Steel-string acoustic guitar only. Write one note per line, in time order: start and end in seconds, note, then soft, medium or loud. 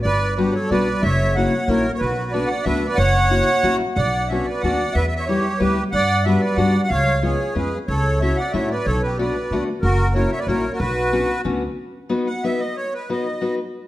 0.38 0.55 G3 medium
0.38 0.54 B3 soft
0.38 0.54 D4 medium
0.38 0.55 F#4 medium
0.71 0.87 G3 medium
0.71 0.88 B3 medium
0.71 0.88 D4 medium
0.71 0.88 F#4 medium
1.36 1.53 A#3 medium
1.36 1.53 C#4 soft
1.36 1.53 E4 soft
1.36 1.53 F#4 medium
1.69 1.85 A#3 medium
1.69 1.85 C#4 medium
1.69 1.85 E4 medium
1.69 1.85 F#4 medium
2.34 2.50 A3 medium
2.34 2.50 B3 medium
2.34 2.50 D4 medium
2.34 2.50 F#4 medium
2.66 2.82 A3 medium
2.66 2.82 B3 medium
2.66 2.82 D4 medium
2.66 2.82 F#4 medium
3.30 3.47 A#3 soft
3.30 3.47 C#4 soft
3.30 3.48 E4 medium
3.30 3.47 F#4 medium
3.63 3.81 A#3 medium
3.63 3.80 C#4 medium
3.63 3.81 E4 medium
3.63 3.81 F#4 medium
4.30 4.47 B3 soft
4.30 4.47 C#4 soft
4.30 4.47 D4 soft
4.30 4.47 F#4 medium
4.64 4.80 B3 medium
4.64 4.80 C#4 medium
4.64 4.80 D4 soft
4.64 4.80 F#4 medium
5.28 5.45 G3 medium
5.28 5.45 B3 soft
5.28 5.45 E4 soft
5.28 5.45 G4 medium
5.60 5.77 G3 medium
5.60 5.77 B3 medium
5.60 5.77 E4 medium
5.60 5.77 G4 medium
6.25 6.42 G3 medium
6.25 6.42 B3 medium
6.25 6.42 D4 medium
6.25 6.42 F#4 medium
6.58 6.74 G3 medium
6.58 6.74 B3 medium
6.58 6.74 D4 medium
6.58 6.74 F#4 medium
7.22 7.39 G#3 soft
7.22 7.39 B3 soft
7.22 7.39 C#4 soft
7.22 7.39 F4 medium
7.55 7.72 G#3 medium
7.55 7.72 B3 soft
7.55 7.72 C#4 medium
7.55 7.72 F4 medium
8.22 8.38 A3 soft
8.22 8.38 C#4 soft
8.22 8.38 E4 soft
8.22 8.38 F#4 medium
8.53 8.70 A3 medium
8.53 8.70 C#4 medium
8.53 8.70 E4 medium
8.53 8.70 F#4 medium
9.19 9.35 A3 medium
9.19 9.35 B3 medium
9.19 9.35 D4 medium
9.19 9.35 F#4 medium
9.52 9.68 A3 medium
9.52 9.68 B3 soft
9.52 9.68 D4 medium
9.52 9.68 F#4 medium
10.15 10.31 A#3 soft
10.15 10.31 C#4 soft
10.15 10.31 E4 medium
10.15 10.31 F#4 medium
10.48 10.64 A#3 medium
10.48 10.64 C#4 medium
10.48 10.64 E4 medium
10.48 10.64 F#4 medium
11.13 11.29 B3 soft
11.13 11.29 C#4 medium
11.13 11.29 D4 medium
11.13 11.29 F#4 medium
11.45 11.62 B3 medium
11.45 11.62 C#4 medium
11.45 11.62 D4 medium
11.45 11.62 F#4 medium
12.09 12.27 B3 medium
12.09 12.27 D#4 medium
12.09 12.27 F#4 medium
12.09 12.27 B4 medium
12.44 12.61 B3 medium
12.44 12.61 D#4 medium
12.44 12.61 F#4 soft
12.44 12.61 B4 medium
13.10 13.26 B3 medium
13.10 13.26 D#4 soft
13.10 13.26 F#4 medium
13.10 13.26 B4 medium
13.41 13.58 B3 medium
13.41 13.58 D#4 soft
13.41 13.58 F#4 medium
13.41 13.58 B4 medium